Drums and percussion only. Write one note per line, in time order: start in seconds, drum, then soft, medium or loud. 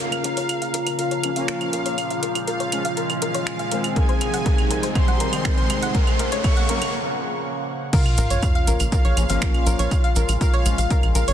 0.12 closed hi-hat soft
0.12 claves medium
0.24 closed hi-hat loud
0.37 closed hi-hat medium
0.49 closed hi-hat medium
0.49 claves medium
0.62 closed hi-hat soft
0.74 closed hi-hat loud
0.87 closed hi-hat medium
0.87 claves soft
0.99 closed hi-hat medium
1.11 closed hi-hat soft
1.24 closed hi-hat loud
1.24 claves soft
1.36 closed hi-hat medium
1.48 finger snap loud
1.48 closed hi-hat medium
1.61 closed hi-hat soft
1.61 claves medium
1.73 closed hi-hat loud
1.86 closed hi-hat medium
1.98 closed hi-hat medium
1.98 claves soft
2.10 closed hi-hat soft
2.23 closed hi-hat loud
2.35 closed hi-hat medium
2.35 claves soft
2.48 closed hi-hat medium
2.60 closed hi-hat soft
2.72 closed hi-hat loud
2.72 claves soft
2.85 closed hi-hat medium
2.97 closed hi-hat medium
3.10 closed hi-hat soft
3.10 claves soft
3.22 closed hi-hat loud
3.34 closed hi-hat medium
3.47 finger snap loud
3.47 closed hi-hat medium
3.47 claves soft
3.59 closed hi-hat soft
3.71 closed hi-hat loud
3.84 closed hi-hat medium
3.84 claves medium
3.96 kick loud
3.96 closed hi-hat medium
4.09 closed hi-hat soft
4.21 closed hi-hat loud
4.21 claves soft
4.34 closed hi-hat medium
4.46 kick loud
4.46 closed hi-hat medium
4.58 closed hi-hat soft
4.58 claves soft
4.71 closed hi-hat loud
4.83 closed hi-hat medium
4.95 kick loud
4.95 closed hi-hat medium
4.95 claves soft
5.08 closed hi-hat soft
5.20 closed hi-hat loud
5.33 closed hi-hat medium
5.33 claves soft
5.45 finger snap loud
5.45 kick loud
5.45 closed hi-hat medium
5.58 closed hi-hat soft
5.70 closed hi-hat loud
5.70 claves medium
5.82 closed hi-hat medium
5.95 kick loud
5.95 closed hi-hat medium
6.07 closed hi-hat soft
6.07 claves medium
6.19 closed hi-hat loud
6.32 closed hi-hat medium
6.44 kick loud
6.44 closed hi-hat medium
6.44 claves medium
6.57 closed hi-hat soft
6.69 closed hi-hat loud
6.82 closed hi-hat medium
6.82 claves medium
7.93 kick loud
7.93 closed hi-hat medium
7.93 crash loud
7.93 shaker soft
8.06 closed hi-hat soft
8.06 claves medium
8.18 closed hi-hat loud
8.18 shaker medium
8.30 closed hi-hat medium
8.30 shaker soft
8.42 kick loud
8.42 closed hi-hat medium
8.42 claves medium
8.42 shaker soft
8.55 closed hi-hat soft
8.67 closed hi-hat loud
8.67 shaker medium
8.80 closed hi-hat medium
8.80 claves medium
8.80 shaker medium
8.92 kick loud
8.92 closed hi-hat medium
8.92 shaker soft
9.05 closed hi-hat soft
9.17 closed hi-hat loud
9.17 claves medium
9.17 shaker medium
9.29 closed hi-hat medium
9.29 shaker soft
9.42 finger snap loud
9.42 kick loud
9.42 closed hi-hat medium
9.42 shaker soft
9.54 closed hi-hat soft
9.54 claves medium
9.67 closed hi-hat loud
9.67 shaker loud
9.79 closed hi-hat medium
9.79 shaker soft
9.91 kick loud
9.91 closed hi-hat medium
9.91 claves soft
9.91 shaker soft
10.04 closed hi-hat soft
10.16 closed hi-hat loud
10.16 shaker loud
10.29 closed hi-hat medium
10.29 claves medium
10.29 shaker medium
10.41 kick loud
10.41 closed hi-hat medium
10.41 shaker soft
10.54 closed hi-hat soft
10.66 closed hi-hat loud
10.66 claves medium
10.66 shaker loud
10.78 closed hi-hat medium
10.78 shaker medium
10.90 kick loud
10.90 closed hi-hat medium
10.90 shaker soft
11.03 closed hi-hat soft
11.03 claves medium
11.15 closed hi-hat loud
11.15 shaker medium
11.28 closed hi-hat medium
11.28 shaker medium